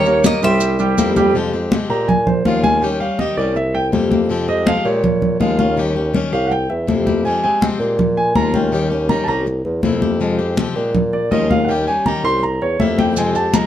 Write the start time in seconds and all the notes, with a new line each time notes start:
Already playing: D#2 A#4 C#5
0.05 G3 A#3 C#4 G4 A#4 C#5, high conga, maracas
0.24 D#3 G3 C#4 G4 A#4 D#5, high conga, maracas
0.42 C2 G3 C#4 G4 C5 E5 G5, high conga, maracas
0.60 muted steel-string acoustic guitar stroke, high conga, maracas
0.79 G3 G4 G5, high conga, maracas
0.97 F2 C3 G3 A#3 E4 G4, high conga, maracas
1.16 G3 A#3 E4 G4 G5, high conga, maracas
1.34 C3 F3 G#3 C4 G4, high conga
1.53 G#3 C4 G4, high conga
1.72 C3 F3 G#3 C4 G4, high conga
1.90 A#2 G#3 C4 G4 A#5, high conga
2.08 G#5, muted steel-string acoustic guitar stroke, high conga, low conga
2.27 C5, high conga, low conga
2.45 D#2 F3 G#3 C#4 F4 F5, high conga
2.63 G#3 C#4 F4 G#5, high conga
2.82 D#3 G3 C#4 G4 G5, high conga
3.00 G3 C#4 G4 F5, high conga
3.19 D#3 G3 C#4 G4 D#5, high conga
3.37 C2 G3 C#4 G4 D5, high conga
3.56 E5, muted steel-string acoustic guitar stroke, high conga
3.75 G5, high conga
3.92 F2 C3 G3 A#3 E4 G4, high conga
4.11 A#3 E4 G4, high conga
4.29 C3 F3 G#3 C4 G4, high conga
4.48 G#3 C4 G4 D#5, high conga
4.66 C3 F3 G#3 C4 G4 F5, high conga
4.85 A#2 G#3 C4 G4 C#5, high conga
5.04 muted steel-string acoustic guitar stroke, high conga, low conga
5.22 high conga, low conga
5.40 D#2 F3 G#3 C#4 F4 F5, high conga
5.59 G#3 C#4 F4 F5, high conga
5.77 D#3 G3 C#4 G4, high conga
5.96 G3 C#4 G4, high conga
6.14 D#3 G3 C#4 G4, high conga
6.32 C2 G3 C#4 G4 F5, high conga
6.47 F#5
6.51 G5, muted steel-string acoustic guitar stroke, high conga
6.70 E2 E5, high conga
6.87 F2 C3 G3 A#3 E4 G4, high conga
7.06 A#3 E4 G4, high conga
7.25 C3 F3 G#3 C4 G4 G#5, high conga
7.43 G#3 C4 G4 G#5, high conga
7.61 C3 F3 G#3 C4 G4, high conga
7.79 A#2 G#3 C4 G4, high conga
7.98 muted steel-string acoustic guitar stroke, high conga, low conga
8.17 G#5, high conga
8.35 D#2 F3 G#3 C#4 F4 A#5, high conga
8.54 G#3 C#4 F4 G5, high conga
8.72 D#3 G3 C#4 G4, high conga
8.90 G3 C#4 G4, high conga
9.09 D#3 G3 C#4 G4 A#5, high conga
9.24 C2 G4 A5
9.28 G3 C#4 A#5, high conga
9.46 muted steel-string acoustic guitar stroke, high conga
9.65 E2, high conga
9.83 F2 C3 G3 A#3 E4 G4, high conga
10.02 A#3 E4 G4, high conga
10.20 C3 F3 G#3 C4 G4, high conga
10.39 G#3 C4 G4, high conga
10.57 C3 F3 G#3 C4 G4, high conga
10.76 A#2 G#3 C4 G4, high conga
10.94 muted steel-string acoustic guitar stroke, high conga, low conga
11.13 D5, high conga
11.31 D#2 F3 G#3 C#4 F4 D#5, high conga
11.50 G#3 C#4 F4 F5, high conga
11.65 D#3 F#5
11.69 G3 C#4 G4 G5, high conga
11.87 G3 C#4 G4 G#5, high conga
12.06 D#3 G3 C#4 G4 A#5, high conga
12.24 C2 G3 C#4 G4 C6, high conga
12.43 A#5, muted steel-string acoustic guitar stroke, high conga
12.61 E2 C#5, high conga
12.79 F2 C3 G3 A#3 E4 G4 E5, high conga
12.98 A#3 E4 G4 G5, high conga
13.13 C3 G5, maracas
13.17 F3 G#3 C4 G4 G#5, high conga
13.35 G#3 C4 G4 A5, high conga, maracas
13.53 C3 F3 G#3 C4 G4 A#5, high conga, maracas